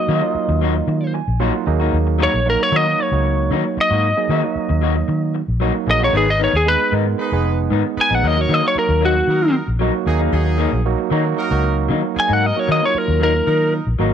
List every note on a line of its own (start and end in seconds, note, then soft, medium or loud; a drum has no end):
0.00 0.20 F#3 medium
0.00 0.20 A#3 medium
0.00 0.20 D#4 medium
0.00 0.20 F#4 medium
0.00 1.12 D#5 medium
0.08 0.20 D#3 loud
0.08 0.23 F#3 medium
0.08 0.23 A#3 medium
0.08 0.22 D#4 medium
0.08 0.21 F#4 medium
0.22 1.19 F#3 medium
0.22 1.20 A#3 medium
0.22 1.19 D#4 medium
0.22 1.19 F4 medium
0.22 muted clean electric guitar stroke soft
0.35 muted fingered electric bass stroke soft
0.48 0.81 D#2 medium
0.48 muted clean electric guitar stroke soft
0.61 0.75 F#3 medium
0.61 0.75 A#3 medium
0.61 0.75 D#4 medium
0.61 0.74 F#4 medium
0.76 muted clean electric guitar stroke soft
0.87 1.21 D#3 medium
0.87 muted clean electric guitar stroke soft
1.14 1.39 G#5 medium
1.14 muted clean electric guitar stroke soft
1.28 1.49 A#1 medium
1.40 1.54 F#3 medium
1.40 1.65 F#3 medium
1.40 1.65 A#3 medium
1.40 1.54 A#3 medium
1.40 1.65 D#4 medium
1.40 1.54 D#4 medium
1.40 1.65 F4 loud
1.40 1.53 F#4 medium
1.40 1.65 F#5 medium
1.54 muted clean electric guitar stroke soft
1.66 1.89 D#2 medium
1.66 2.40 F#3 medium
1.66 2.40 A#3 medium
1.66 2.40 D#4 medium
1.66 2.40 G#4 medium
1.66 1.91 D#5 medium
1.66 muted clean electric guitar stroke soft
1.80 1.97 A#3 soft
1.80 1.96 D#4 medium
1.80 1.96 F#4 medium
1.93 2.26 D#2 loud
2.07 muted clean electric guitar stroke soft
2.19 2.33 F#3 medium
2.19 2.33 A#3 medium
2.19 2.33 D#4 medium
2.19 2.32 F#4 medium
2.23 2.47 C#5 medium
2.33 2.55 A#1 medium
2.33 muted clean electric guitar stroke soft
2.46 2.70 F#3 medium
2.46 2.70 A#3 medium
2.46 2.70 D#4 medium
2.46 2.70 F#4 medium
2.50 2.63 A#4 medium
2.60 2.76 C#5 medium
2.60 muted clean electric guitar stroke soft
2.72 2.94 D#3 medium
2.72 2.86 F#3 medium
2.72 3.09 F#3 medium
2.72 3.09 A#3 medium
2.72 2.86 A#3 medium
2.72 3.09 D#4 medium
2.72 2.86 D#4 medium
2.72 3.09 F#4 medium
2.72 2.85 F#4 medium
2.76 3.03 D#5 medium
2.86 muted clean electric guitar stroke soft
2.99 3.77 C#5 medium
2.99 muted clean electric guitar stroke soft
3.12 3.52 C#2 medium
3.12 4.09 F#3 medium
3.12 4.09 A#3 medium
3.12 4.09 D#4 medium
3.12 4.09 F#4 medium
3.25 muted clean electric guitar stroke soft
3.50 3.62 D#3 medium
3.50 3.65 F#3 medium
3.50 3.65 A#3 medium
3.50 3.64 D#4 medium
3.50 3.64 F#4 medium
3.65 muted clean electric guitar stroke soft
3.77 5.33 D#5 loud
3.77 muted fingered electric bass stroke soft
3.77 muted clean electric guitar stroke soft
3.91 4.12 G#2 medium
3.91 4.07 A#3 soft
3.91 4.07 D#4 medium
3.91 4.06 F#4 medium
4.17 4.41 F#3 medium
4.17 4.41 A#3 medium
4.17 4.41 D#4 medium
4.17 4.41 G#4 medium
4.17 muted clean electric guitar stroke soft
4.29 4.41 D#3 loud
4.29 4.43 F#3 medium
4.29 4.43 A#3 medium
4.29 4.43 D#4 medium
4.29 4.42 F#4 medium
4.43 5.40 F#3 medium
4.43 5.40 A#3 medium
4.43 5.40 D#4 medium
4.43 5.40 F#4 medium
4.43 muted clean electric guitar stroke medium
4.56 muted fingered electric bass stroke soft
4.69 5.02 D#2 medium
4.69 muted clean electric guitar stroke medium
4.81 4.96 F#3 medium
4.81 4.96 A#3 medium
4.81 4.96 D#4 medium
4.81 4.95 F#4 medium
4.96 muted clean electric guitar stroke soft
5.08 5.41 D#3 medium
5.08 muted clean electric guitar stroke soft
5.35 muted clean electric guitar stroke soft
5.48 5.70 A#1 medium
5.60 5.74 F#3 medium
5.60 5.86 F#3 medium
5.60 5.74 A#3 medium
5.60 5.86 A#3 medium
5.60 5.86 D#4 medium
5.60 5.74 D#4 medium
5.60 5.86 F#4 medium
5.60 5.73 F#4 medium
5.74 muted clean electric guitar stroke soft
5.87 6.09 A#1 medium
5.87 6.14 F#3 medium
5.87 6.14 A#3 medium
5.87 6.14 D#4 medium
5.87 6.14 G#4 medium
5.87 muted clean electric guitar stroke soft
5.91 6.02 D#5 medium
6.00 6.13 A#3 soft
6.00 6.13 D#4 soft
6.00 6.13 F#4 soft
6.04 6.15 C#5 medium
6.13 6.46 G#1 medium
6.13 6.27 D#3 medium
6.13 6.27 B3 medium
6.13 6.66 D#4 medium
6.13 6.26 D#4 medium
6.13 6.66 G#4 medium
6.13 6.66 B4 medium
6.17 6.29 G#4 medium
6.27 6.41 D#5 medium
6.27 muted clean electric guitar stroke soft
6.39 6.53 D#3 medium
6.39 6.53 B3 medium
6.39 6.52 D#4 medium
6.44 6.55 C#5 medium
6.53 6.75 D#2 medium
6.53 6.68 G#4 medium
6.53 muted clean electric guitar stroke soft
6.66 6.90 G#3 medium
6.66 6.90 B3 medium
6.66 6.90 D#4 medium
6.66 6.90 G#4 medium
6.66 6.93 B4 medium
6.80 muted clean electric guitar stroke soft
6.91 7.14 G#2 medium
6.91 7.06 D#3 medium
6.91 7.29 G#3 medium
6.91 7.29 B3 medium
6.91 7.06 B3 medium
6.91 7.29 D#4 medium
6.91 7.05 D#4 medium
6.91 7.29 A#4 medium
7.06 muted clean electric guitar stroke medium
7.18 7.59 D#4 medium
7.18 7.59 G#4 medium
7.18 7.59 B4 loud
7.18 muted clean electric guitar stroke soft
7.32 7.72 F1 medium
7.32 8.24 G#3 medium
7.32 8.24 B3 medium
7.32 8.24 D#4 medium
7.32 8.24 G#4 loud
7.45 muted clean electric guitar stroke soft
7.70 7.82 G#2 medium
7.70 7.84 D#3 medium
7.70 7.85 B3 medium
7.70 7.83 D#4 medium
7.84 muted clean electric guitar stroke soft
7.97 8.11 D#4 medium
7.97 8.11 G#4 medium
7.97 8.11 B4 medium
7.97 muted fingered electric bass stroke soft
7.97 muted clean electric guitar stroke soft
8.01 8.15 G#5 medium
8.10 8.21 A#1 medium
8.10 8.24 B3 soft
8.10 8.23 D#4 medium
8.15 8.27 F#5 medium
8.23 8.45 D#2 loud
8.23 8.37 F#3 medium
8.23 8.37 A#3 medium
8.23 8.76 D#4 medium
8.23 8.36 D#4 medium
8.23 8.76 F#4 medium
8.23 8.76 A#4 medium
8.27 8.41 D#5 medium
8.37 8.61 F#3 medium
8.37 8.61 A#3 medium
8.37 8.61 D#4 medium
8.37 8.61 F#4 medium
8.37 muted clean electric guitar stroke soft
8.41 8.54 C#5 medium
8.49 8.60 D#3 loud
8.49 8.63 F#3 medium
8.49 8.63 A#3 medium
8.49 8.62 D#4 medium
8.54 8.65 D#5 medium
8.63 9.60 F#3 medium
8.63 9.60 A#3 medium
8.63 9.60 D#4 medium
8.63 9.60 F#4 medium
8.63 muted clean electric guitar stroke soft
8.68 8.78 C#5 medium
8.75 9.03 A#4 medium
8.75 muted fingered electric bass stroke soft
8.89 9.21 D#2 medium
8.89 muted clean electric guitar stroke soft
9.01 9.15 F#3 medium
9.01 9.15 A#3 medium
9.01 9.14 D#4 medium
9.05 9.54 F#4 loud
9.15 muted clean electric guitar stroke soft
9.27 9.60 D#3 medium
9.27 9.68 D#4 medium
9.27 9.68 F#4 medium
9.27 9.69 A#4 medium
9.27 muted clean electric guitar stroke soft
9.54 muted clean electric guitar stroke soft
9.68 9.89 A#1 medium
9.79 9.94 F#3 medium
9.79 10.05 F#3 medium
9.79 9.94 A#3 medium
9.79 10.05 A#3 medium
9.79 10.05 D#4 medium
9.79 9.92 D#4 medium
9.79 10.05 F#4 loud
9.93 muted clean electric guitar stroke medium
10.06 10.28 D#2 medium
10.06 10.80 F#3 medium
10.06 10.80 A#3 medium
10.06 10.20 D#4 medium
10.06 10.80 D#4 medium
10.06 10.20 F#4 medium
10.06 10.20 G#4 medium
10.06 10.80 G#4 loud
10.06 muted clean electric guitar stroke soft
10.19 10.36 A#3 soft
10.19 10.35 D#4 medium
10.32 10.65 D#2 loud
10.32 10.85 D#4 medium
10.32 10.85 F#4 medium
10.32 10.85 G#4 loud
10.46 muted clean electric guitar stroke medium
10.58 10.72 F#3 medium
10.58 10.72 A#3 medium
10.58 10.71 D#4 loud
10.72 10.94 A#1 medium
10.72 muted clean electric guitar stroke medium
10.86 11.10 F#3 loud
10.86 11.10 A#3 medium
10.86 11.10 D#4 medium
10.86 11.10 F#4 loud
10.98 muted clean electric guitar stroke medium
11.10 11.33 D#3 medium
11.10 11.25 F#3 medium
11.10 11.48 F#3 medium
11.10 11.48 A#3 medium
11.10 11.24 A#3 medium
11.10 11.48 D#4 medium
11.10 11.23 D#4 medium
11.10 11.48 F#4 medium
11.24 muted clean electric guitar stroke medium
11.37 11.78 D#4 medium
11.37 11.78 F#4 medium
11.37 11.78 A#4 loud
11.37 muted clean electric guitar stroke soft
11.51 11.91 C#2 loud
11.51 12.48 F#3 medium
11.51 12.48 A#3 medium
11.51 12.48 D#4 medium
11.51 12.48 F#4 loud
11.63 muted clean electric guitar stroke soft
11.89 12.01 D#3 loud
11.89 12.03 F#3 medium
11.89 12.03 A#3 medium
11.89 12.02 D#4 medium
12.03 muted clean electric guitar stroke soft
12.15 12.30 D#4 medium
12.15 12.30 F#4 medium
12.15 12.30 G#4 medium
12.15 muted clean electric guitar stroke soft
12.15 muted fingered electric bass stroke soft
12.20 12.31 G#5 loud
12.28 12.51 G#2 medium
12.28 12.46 A#3 soft
12.28 12.44 D#4 medium
12.33 12.46 F#5 loud
12.42 12.94 D#4 medium
12.42 12.95 F#4 medium
12.42 12.95 A#4 medium
12.46 12.59 D#5 loud
12.55 12.80 F#3 medium
12.55 12.80 A#3 medium
12.55 12.80 D#4 medium
12.55 12.80 F#4 medium
12.55 muted clean electric guitar stroke soft
12.59 12.70 C#5 medium
12.68 12.80 D#3 loud
12.68 12.82 F#3 medium
12.68 12.82 A#3 medium
12.68 12.81 D#4 medium
12.72 12.83 D#5 medium
12.82 13.79 F#3 medium
12.82 13.79 A#3 medium
12.82 13.79 D#4 medium
12.82 13.79 F4 medium
12.82 12.98 C#5 medium
12.82 muted clean electric guitar stroke soft
12.94 13.22 A#4 medium
12.94 muted fingered electric bass stroke soft
13.08 13.40 D#2 medium
13.08 muted clean electric guitar stroke soft
13.20 13.34 F#3 medium
13.20 13.34 A#3 medium
13.20 13.33 D#4 medium
13.20 13.73 A#4 loud
13.34 muted clean electric guitar stroke soft
13.47 13.80 D#3 medium
13.47 13.87 D#4 medium
13.47 13.87 A#4 medium
13.47 muted clean electric guitar stroke soft
13.73 muted clean electric guitar stroke soft
13.87 13.97 A#1 medium
13.99 14.14 G#1 medium
13.99 14.13 F#3 medium
13.99 14.14 F#3 medium
13.99 14.14 A#3 medium
13.99 14.13 A#3 medium
13.99 14.14 D#4 medium
13.99 14.12 D#4 medium
13.99 14.14 F#4 loud